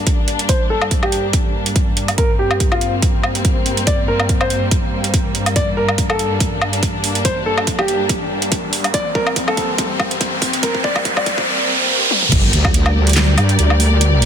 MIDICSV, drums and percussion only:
0, 0, Header, 1, 2, 480
1, 0, Start_track
1, 0, Key_signature, -2, "minor"
1, 0, Tempo, 422535
1, 556, Time_signature, 4, 2, 24, 8
1, 16193, End_track
2, 0, Start_track
2, 0, Title_t, "Drums"
2, 75, Note_on_c, 9, 42, 80
2, 76, Note_on_c, 9, 36, 95
2, 188, Note_off_c, 9, 42, 0
2, 189, Note_off_c, 9, 36, 0
2, 315, Note_on_c, 9, 42, 50
2, 429, Note_off_c, 9, 42, 0
2, 446, Note_on_c, 9, 42, 53
2, 555, Note_off_c, 9, 42, 0
2, 555, Note_on_c, 9, 42, 78
2, 556, Note_on_c, 9, 36, 92
2, 669, Note_off_c, 9, 36, 0
2, 669, Note_off_c, 9, 42, 0
2, 926, Note_on_c, 9, 77, 71
2, 1035, Note_on_c, 9, 42, 78
2, 1036, Note_on_c, 9, 36, 93
2, 1040, Note_off_c, 9, 77, 0
2, 1149, Note_off_c, 9, 36, 0
2, 1149, Note_off_c, 9, 42, 0
2, 1167, Note_on_c, 9, 77, 72
2, 1276, Note_on_c, 9, 42, 51
2, 1280, Note_off_c, 9, 77, 0
2, 1389, Note_off_c, 9, 42, 0
2, 1515, Note_on_c, 9, 42, 79
2, 1516, Note_on_c, 9, 36, 96
2, 1629, Note_off_c, 9, 36, 0
2, 1629, Note_off_c, 9, 42, 0
2, 1887, Note_on_c, 9, 42, 52
2, 1996, Note_off_c, 9, 42, 0
2, 1996, Note_on_c, 9, 36, 98
2, 1996, Note_on_c, 9, 42, 74
2, 2109, Note_off_c, 9, 36, 0
2, 2109, Note_off_c, 9, 42, 0
2, 2235, Note_on_c, 9, 42, 52
2, 2349, Note_off_c, 9, 42, 0
2, 2367, Note_on_c, 9, 42, 54
2, 2367, Note_on_c, 9, 77, 49
2, 2476, Note_off_c, 9, 42, 0
2, 2476, Note_on_c, 9, 36, 96
2, 2476, Note_on_c, 9, 42, 79
2, 2480, Note_off_c, 9, 77, 0
2, 2589, Note_off_c, 9, 36, 0
2, 2589, Note_off_c, 9, 42, 0
2, 2847, Note_on_c, 9, 77, 73
2, 2956, Note_on_c, 9, 36, 94
2, 2956, Note_on_c, 9, 42, 75
2, 2961, Note_off_c, 9, 77, 0
2, 3069, Note_off_c, 9, 36, 0
2, 3069, Note_off_c, 9, 42, 0
2, 3087, Note_on_c, 9, 77, 74
2, 3195, Note_on_c, 9, 42, 49
2, 3200, Note_off_c, 9, 77, 0
2, 3309, Note_off_c, 9, 42, 0
2, 3435, Note_on_c, 9, 42, 74
2, 3436, Note_on_c, 9, 36, 95
2, 3549, Note_off_c, 9, 36, 0
2, 3549, Note_off_c, 9, 42, 0
2, 3675, Note_on_c, 9, 77, 72
2, 3789, Note_off_c, 9, 77, 0
2, 3806, Note_on_c, 9, 42, 49
2, 3915, Note_off_c, 9, 42, 0
2, 3915, Note_on_c, 9, 42, 74
2, 3916, Note_on_c, 9, 36, 101
2, 4029, Note_off_c, 9, 36, 0
2, 4029, Note_off_c, 9, 42, 0
2, 4155, Note_on_c, 9, 42, 49
2, 4269, Note_off_c, 9, 42, 0
2, 4286, Note_on_c, 9, 42, 51
2, 4395, Note_off_c, 9, 42, 0
2, 4395, Note_on_c, 9, 42, 76
2, 4396, Note_on_c, 9, 36, 93
2, 4509, Note_off_c, 9, 36, 0
2, 4509, Note_off_c, 9, 42, 0
2, 4766, Note_on_c, 9, 77, 77
2, 4875, Note_on_c, 9, 42, 74
2, 4876, Note_on_c, 9, 36, 96
2, 4880, Note_off_c, 9, 77, 0
2, 4989, Note_off_c, 9, 36, 0
2, 4989, Note_off_c, 9, 42, 0
2, 5006, Note_on_c, 9, 77, 80
2, 5115, Note_on_c, 9, 42, 50
2, 5120, Note_off_c, 9, 77, 0
2, 5229, Note_off_c, 9, 42, 0
2, 5355, Note_on_c, 9, 42, 74
2, 5356, Note_on_c, 9, 36, 96
2, 5469, Note_off_c, 9, 36, 0
2, 5469, Note_off_c, 9, 42, 0
2, 5726, Note_on_c, 9, 42, 48
2, 5835, Note_off_c, 9, 42, 0
2, 5835, Note_on_c, 9, 36, 95
2, 5835, Note_on_c, 9, 42, 74
2, 5949, Note_off_c, 9, 36, 0
2, 5949, Note_off_c, 9, 42, 0
2, 6075, Note_on_c, 9, 42, 47
2, 6188, Note_off_c, 9, 42, 0
2, 6206, Note_on_c, 9, 42, 50
2, 6206, Note_on_c, 9, 77, 52
2, 6315, Note_off_c, 9, 42, 0
2, 6315, Note_on_c, 9, 36, 98
2, 6315, Note_on_c, 9, 42, 75
2, 6320, Note_off_c, 9, 77, 0
2, 6428, Note_off_c, 9, 42, 0
2, 6429, Note_off_c, 9, 36, 0
2, 6686, Note_on_c, 9, 77, 82
2, 6794, Note_on_c, 9, 42, 75
2, 6795, Note_on_c, 9, 36, 106
2, 6799, Note_off_c, 9, 77, 0
2, 6908, Note_off_c, 9, 42, 0
2, 6909, Note_off_c, 9, 36, 0
2, 6926, Note_on_c, 9, 77, 82
2, 7035, Note_on_c, 9, 42, 50
2, 7039, Note_off_c, 9, 77, 0
2, 7149, Note_off_c, 9, 42, 0
2, 7275, Note_on_c, 9, 36, 104
2, 7275, Note_on_c, 9, 42, 77
2, 7389, Note_off_c, 9, 36, 0
2, 7389, Note_off_c, 9, 42, 0
2, 7515, Note_on_c, 9, 77, 82
2, 7629, Note_off_c, 9, 77, 0
2, 7646, Note_on_c, 9, 42, 49
2, 7755, Note_off_c, 9, 42, 0
2, 7755, Note_on_c, 9, 36, 108
2, 7755, Note_on_c, 9, 42, 75
2, 7869, Note_off_c, 9, 36, 0
2, 7869, Note_off_c, 9, 42, 0
2, 7994, Note_on_c, 9, 46, 92
2, 8108, Note_off_c, 9, 46, 0
2, 8126, Note_on_c, 9, 42, 51
2, 8235, Note_off_c, 9, 42, 0
2, 8235, Note_on_c, 9, 36, 102
2, 8235, Note_on_c, 9, 42, 78
2, 8348, Note_off_c, 9, 42, 0
2, 8349, Note_off_c, 9, 36, 0
2, 8606, Note_on_c, 9, 77, 78
2, 8715, Note_on_c, 9, 36, 106
2, 8715, Note_on_c, 9, 42, 77
2, 8720, Note_off_c, 9, 77, 0
2, 8828, Note_off_c, 9, 42, 0
2, 8829, Note_off_c, 9, 36, 0
2, 8846, Note_on_c, 9, 77, 82
2, 8954, Note_on_c, 9, 42, 51
2, 8959, Note_off_c, 9, 77, 0
2, 9068, Note_off_c, 9, 42, 0
2, 9195, Note_on_c, 9, 36, 105
2, 9195, Note_on_c, 9, 42, 78
2, 9308, Note_off_c, 9, 42, 0
2, 9309, Note_off_c, 9, 36, 0
2, 9566, Note_on_c, 9, 42, 52
2, 9675, Note_off_c, 9, 42, 0
2, 9675, Note_on_c, 9, 36, 107
2, 9675, Note_on_c, 9, 42, 77
2, 9788, Note_off_c, 9, 42, 0
2, 9789, Note_off_c, 9, 36, 0
2, 9915, Note_on_c, 9, 46, 94
2, 10028, Note_off_c, 9, 46, 0
2, 10046, Note_on_c, 9, 42, 53
2, 10046, Note_on_c, 9, 77, 57
2, 10155, Note_off_c, 9, 42, 0
2, 10155, Note_on_c, 9, 36, 101
2, 10155, Note_on_c, 9, 42, 84
2, 10160, Note_off_c, 9, 77, 0
2, 10268, Note_off_c, 9, 42, 0
2, 10269, Note_off_c, 9, 36, 0
2, 10396, Note_on_c, 9, 36, 107
2, 10509, Note_off_c, 9, 36, 0
2, 10526, Note_on_c, 9, 77, 77
2, 10635, Note_on_c, 9, 42, 82
2, 10636, Note_on_c, 9, 36, 104
2, 10640, Note_off_c, 9, 77, 0
2, 10749, Note_off_c, 9, 36, 0
2, 10749, Note_off_c, 9, 42, 0
2, 10766, Note_on_c, 9, 77, 81
2, 10875, Note_on_c, 9, 42, 56
2, 10876, Note_on_c, 9, 36, 106
2, 10880, Note_off_c, 9, 77, 0
2, 10989, Note_off_c, 9, 36, 0
2, 10989, Note_off_c, 9, 42, 0
2, 11115, Note_on_c, 9, 42, 81
2, 11116, Note_on_c, 9, 36, 102
2, 11228, Note_off_c, 9, 42, 0
2, 11229, Note_off_c, 9, 36, 0
2, 11355, Note_on_c, 9, 77, 79
2, 11356, Note_on_c, 9, 36, 106
2, 11469, Note_off_c, 9, 36, 0
2, 11469, Note_off_c, 9, 77, 0
2, 11486, Note_on_c, 9, 42, 56
2, 11595, Note_off_c, 9, 42, 0
2, 11595, Note_on_c, 9, 42, 81
2, 11596, Note_on_c, 9, 36, 108
2, 11709, Note_off_c, 9, 36, 0
2, 11709, Note_off_c, 9, 42, 0
2, 11835, Note_on_c, 9, 46, 95
2, 11836, Note_on_c, 9, 36, 97
2, 11949, Note_off_c, 9, 36, 0
2, 11949, Note_off_c, 9, 46, 0
2, 11967, Note_on_c, 9, 42, 54
2, 12075, Note_off_c, 9, 42, 0
2, 12075, Note_on_c, 9, 42, 87
2, 12076, Note_on_c, 9, 36, 105
2, 12189, Note_off_c, 9, 36, 0
2, 12189, Note_off_c, 9, 42, 0
2, 12207, Note_on_c, 9, 36, 91
2, 12315, Note_off_c, 9, 36, 0
2, 12315, Note_on_c, 9, 36, 109
2, 12429, Note_off_c, 9, 36, 0
2, 12447, Note_on_c, 9, 36, 93
2, 12447, Note_on_c, 9, 77, 76
2, 12555, Note_on_c, 9, 42, 85
2, 12556, Note_off_c, 9, 36, 0
2, 12556, Note_on_c, 9, 36, 109
2, 12560, Note_off_c, 9, 77, 0
2, 12669, Note_off_c, 9, 36, 0
2, 12669, Note_off_c, 9, 42, 0
2, 12687, Note_on_c, 9, 36, 90
2, 12687, Note_on_c, 9, 77, 80
2, 12795, Note_on_c, 9, 42, 56
2, 12796, Note_off_c, 9, 36, 0
2, 12796, Note_on_c, 9, 36, 105
2, 12801, Note_off_c, 9, 77, 0
2, 12909, Note_off_c, 9, 36, 0
2, 12909, Note_off_c, 9, 42, 0
2, 12927, Note_on_c, 9, 36, 96
2, 13040, Note_off_c, 9, 36, 0
2, 13755, Note_on_c, 9, 48, 62
2, 13869, Note_off_c, 9, 48, 0
2, 13886, Note_on_c, 9, 47, 74
2, 13995, Note_on_c, 9, 42, 86
2, 13995, Note_on_c, 9, 49, 109
2, 13996, Note_on_c, 9, 36, 116
2, 14000, Note_off_c, 9, 47, 0
2, 14109, Note_off_c, 9, 36, 0
2, 14109, Note_off_c, 9, 42, 0
2, 14109, Note_off_c, 9, 49, 0
2, 14235, Note_on_c, 9, 42, 57
2, 14349, Note_off_c, 9, 42, 0
2, 14367, Note_on_c, 9, 36, 108
2, 14367, Note_on_c, 9, 77, 74
2, 14475, Note_on_c, 9, 42, 85
2, 14480, Note_off_c, 9, 36, 0
2, 14480, Note_off_c, 9, 77, 0
2, 14589, Note_off_c, 9, 42, 0
2, 14606, Note_on_c, 9, 77, 76
2, 14720, Note_off_c, 9, 77, 0
2, 14846, Note_on_c, 9, 42, 52
2, 14875, Note_off_c, 9, 42, 0
2, 14875, Note_on_c, 9, 42, 67
2, 14919, Note_off_c, 9, 42, 0
2, 14919, Note_on_c, 9, 42, 87
2, 14955, Note_off_c, 9, 42, 0
2, 14955, Note_on_c, 9, 38, 124
2, 14955, Note_on_c, 9, 39, 94
2, 14955, Note_on_c, 9, 42, 84
2, 15069, Note_off_c, 9, 38, 0
2, 15069, Note_off_c, 9, 39, 0
2, 15069, Note_off_c, 9, 42, 0
2, 15195, Note_on_c, 9, 42, 53
2, 15195, Note_on_c, 9, 77, 75
2, 15309, Note_off_c, 9, 42, 0
2, 15309, Note_off_c, 9, 77, 0
2, 15326, Note_on_c, 9, 42, 39
2, 15435, Note_off_c, 9, 42, 0
2, 15435, Note_on_c, 9, 42, 81
2, 15549, Note_off_c, 9, 42, 0
2, 15567, Note_on_c, 9, 77, 58
2, 15675, Note_on_c, 9, 46, 90
2, 15680, Note_off_c, 9, 77, 0
2, 15789, Note_off_c, 9, 46, 0
2, 15915, Note_on_c, 9, 42, 84
2, 16029, Note_off_c, 9, 42, 0
2, 16155, Note_on_c, 9, 42, 56
2, 16193, Note_off_c, 9, 42, 0
2, 16193, End_track
0, 0, End_of_file